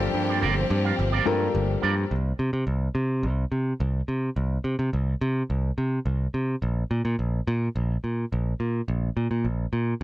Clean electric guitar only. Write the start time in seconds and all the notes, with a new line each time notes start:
0.15 muted clean electric guitar stroke
0.28 F4 A#4 D5
0.42 F4 A#4 D5
0.56 muted clean electric guitar stroke
0.70 muted clean electric guitar stroke
0.85 F4 A#4 F5
0.99 muted clean electric guitar stroke
1.12 F4 A#4 D5
1.40 muted clean electric guitar stroke
1.68 muted clean electric guitar stroke
1.81 F4 A#4 D5
1.96 muted clean electric guitar stroke